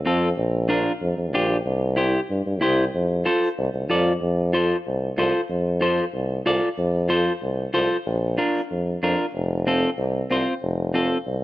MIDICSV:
0, 0, Header, 1, 3, 480
1, 0, Start_track
1, 0, Key_signature, -1, "major"
1, 0, Tempo, 320342
1, 562, Time_signature, 4, 2, 24, 8
1, 17140, End_track
2, 0, Start_track
2, 0, Title_t, "Clean electric guitar"
2, 0, Program_c, 0, 27
2, 85, Note_on_c, 0, 60, 82
2, 93, Note_on_c, 0, 65, 68
2, 103, Note_on_c, 0, 69, 83
2, 419, Note_off_c, 0, 60, 0
2, 423, Note_off_c, 0, 65, 0
2, 428, Note_off_c, 0, 69, 0
2, 1030, Note_on_c, 0, 62, 81
2, 1036, Note_on_c, 0, 65, 71
2, 1046, Note_on_c, 0, 70, 78
2, 1371, Note_off_c, 0, 62, 0
2, 1375, Note_off_c, 0, 65, 0
2, 1377, Note_off_c, 0, 70, 0
2, 2010, Note_on_c, 0, 62, 76
2, 2020, Note_on_c, 0, 67, 80
2, 2021, Note_on_c, 0, 65, 72
2, 2342, Note_off_c, 0, 62, 0
2, 2343, Note_off_c, 0, 65, 0
2, 2346, Note_off_c, 0, 67, 0
2, 2940, Note_on_c, 0, 64, 73
2, 2952, Note_on_c, 0, 67, 81
2, 2961, Note_on_c, 0, 72, 70
2, 3286, Note_off_c, 0, 64, 0
2, 3292, Note_off_c, 0, 67, 0
2, 3293, Note_off_c, 0, 72, 0
2, 3910, Note_on_c, 0, 64, 79
2, 3922, Note_on_c, 0, 67, 71
2, 3929, Note_on_c, 0, 72, 86
2, 4251, Note_off_c, 0, 64, 0
2, 4254, Note_off_c, 0, 67, 0
2, 4259, Note_off_c, 0, 72, 0
2, 4876, Note_on_c, 0, 65, 78
2, 4881, Note_on_c, 0, 69, 73
2, 4892, Note_on_c, 0, 72, 72
2, 5212, Note_off_c, 0, 65, 0
2, 5216, Note_off_c, 0, 69, 0
2, 5218, Note_off_c, 0, 72, 0
2, 5838, Note_on_c, 0, 65, 78
2, 5848, Note_on_c, 0, 69, 66
2, 5856, Note_on_c, 0, 74, 71
2, 6173, Note_off_c, 0, 65, 0
2, 6179, Note_off_c, 0, 69, 0
2, 6180, Note_off_c, 0, 74, 0
2, 6793, Note_on_c, 0, 65, 74
2, 6801, Note_on_c, 0, 69, 57
2, 6809, Note_on_c, 0, 72, 79
2, 7132, Note_off_c, 0, 65, 0
2, 7132, Note_off_c, 0, 69, 0
2, 7138, Note_off_c, 0, 72, 0
2, 7761, Note_on_c, 0, 65, 79
2, 7768, Note_on_c, 0, 69, 66
2, 7781, Note_on_c, 0, 72, 82
2, 8094, Note_off_c, 0, 65, 0
2, 8099, Note_off_c, 0, 69, 0
2, 8101, Note_off_c, 0, 72, 0
2, 8704, Note_on_c, 0, 65, 73
2, 8718, Note_on_c, 0, 69, 58
2, 8724, Note_on_c, 0, 72, 89
2, 9047, Note_off_c, 0, 65, 0
2, 9050, Note_off_c, 0, 69, 0
2, 9055, Note_off_c, 0, 72, 0
2, 9678, Note_on_c, 0, 65, 87
2, 9684, Note_on_c, 0, 69, 63
2, 9692, Note_on_c, 0, 74, 81
2, 10014, Note_off_c, 0, 69, 0
2, 10015, Note_off_c, 0, 65, 0
2, 10015, Note_off_c, 0, 74, 0
2, 10624, Note_on_c, 0, 65, 79
2, 10635, Note_on_c, 0, 69, 64
2, 10636, Note_on_c, 0, 72, 82
2, 10967, Note_off_c, 0, 65, 0
2, 10969, Note_off_c, 0, 69, 0
2, 10971, Note_off_c, 0, 72, 0
2, 11593, Note_on_c, 0, 65, 82
2, 11602, Note_on_c, 0, 69, 64
2, 11603, Note_on_c, 0, 72, 86
2, 11931, Note_off_c, 0, 69, 0
2, 11932, Note_off_c, 0, 65, 0
2, 11935, Note_off_c, 0, 72, 0
2, 12553, Note_on_c, 0, 62, 78
2, 12560, Note_on_c, 0, 65, 64
2, 12565, Note_on_c, 0, 70, 74
2, 12891, Note_off_c, 0, 62, 0
2, 12894, Note_off_c, 0, 65, 0
2, 12894, Note_off_c, 0, 70, 0
2, 13528, Note_on_c, 0, 62, 73
2, 13537, Note_on_c, 0, 65, 69
2, 13543, Note_on_c, 0, 70, 80
2, 13858, Note_off_c, 0, 62, 0
2, 13863, Note_off_c, 0, 65, 0
2, 13866, Note_off_c, 0, 70, 0
2, 14489, Note_on_c, 0, 60, 83
2, 14500, Note_on_c, 0, 65, 54
2, 14502, Note_on_c, 0, 69, 85
2, 14820, Note_off_c, 0, 60, 0
2, 14822, Note_off_c, 0, 65, 0
2, 14826, Note_off_c, 0, 69, 0
2, 15444, Note_on_c, 0, 60, 77
2, 15451, Note_on_c, 0, 65, 69
2, 15467, Note_on_c, 0, 72, 87
2, 15778, Note_off_c, 0, 60, 0
2, 15781, Note_off_c, 0, 65, 0
2, 15789, Note_off_c, 0, 72, 0
2, 16395, Note_on_c, 0, 60, 72
2, 16403, Note_on_c, 0, 65, 77
2, 16412, Note_on_c, 0, 69, 77
2, 16734, Note_off_c, 0, 60, 0
2, 16739, Note_off_c, 0, 65, 0
2, 16740, Note_off_c, 0, 69, 0
2, 17140, End_track
3, 0, Start_track
3, 0, Title_t, "Tuba"
3, 0, Program_c, 1, 58
3, 83, Note_on_c, 1, 41, 92
3, 466, Note_off_c, 1, 41, 0
3, 558, Note_on_c, 1, 34, 102
3, 1327, Note_off_c, 1, 34, 0
3, 1516, Note_on_c, 1, 41, 90
3, 1710, Note_off_c, 1, 41, 0
3, 1751, Note_on_c, 1, 41, 81
3, 1990, Note_on_c, 1, 34, 93
3, 2013, Note_off_c, 1, 41, 0
3, 2378, Note_off_c, 1, 34, 0
3, 2475, Note_on_c, 1, 36, 101
3, 3244, Note_off_c, 1, 36, 0
3, 3444, Note_on_c, 1, 43, 87
3, 3634, Note_off_c, 1, 43, 0
3, 3681, Note_on_c, 1, 43, 85
3, 3927, Note_on_c, 1, 36, 89
3, 3949, Note_off_c, 1, 43, 0
3, 4307, Note_off_c, 1, 36, 0
3, 4409, Note_on_c, 1, 41, 92
3, 4849, Note_off_c, 1, 41, 0
3, 5365, Note_on_c, 1, 36, 92
3, 5553, Note_off_c, 1, 36, 0
3, 5597, Note_on_c, 1, 36, 80
3, 5833, Note_on_c, 1, 41, 94
3, 5855, Note_off_c, 1, 36, 0
3, 6218, Note_off_c, 1, 41, 0
3, 6308, Note_on_c, 1, 41, 99
3, 7079, Note_off_c, 1, 41, 0
3, 7286, Note_on_c, 1, 36, 88
3, 7665, Note_off_c, 1, 36, 0
3, 7748, Note_on_c, 1, 36, 104
3, 7943, Note_off_c, 1, 36, 0
3, 8230, Note_on_c, 1, 41, 93
3, 9000, Note_off_c, 1, 41, 0
3, 9200, Note_on_c, 1, 36, 89
3, 9582, Note_off_c, 1, 36, 0
3, 9673, Note_on_c, 1, 36, 99
3, 9866, Note_off_c, 1, 36, 0
3, 10156, Note_on_c, 1, 41, 107
3, 10924, Note_off_c, 1, 41, 0
3, 11122, Note_on_c, 1, 36, 89
3, 11503, Note_off_c, 1, 36, 0
3, 11600, Note_on_c, 1, 36, 94
3, 11790, Note_off_c, 1, 36, 0
3, 12078, Note_on_c, 1, 34, 106
3, 12522, Note_off_c, 1, 34, 0
3, 13041, Note_on_c, 1, 41, 83
3, 13423, Note_off_c, 1, 41, 0
3, 13519, Note_on_c, 1, 41, 96
3, 13710, Note_off_c, 1, 41, 0
3, 13996, Note_on_c, 1, 29, 101
3, 14765, Note_off_c, 1, 29, 0
3, 14945, Note_on_c, 1, 36, 85
3, 15334, Note_off_c, 1, 36, 0
3, 15431, Note_on_c, 1, 36, 96
3, 15626, Note_off_c, 1, 36, 0
3, 15914, Note_on_c, 1, 29, 97
3, 16686, Note_off_c, 1, 29, 0
3, 16880, Note_on_c, 1, 36, 84
3, 17140, Note_off_c, 1, 36, 0
3, 17140, End_track
0, 0, End_of_file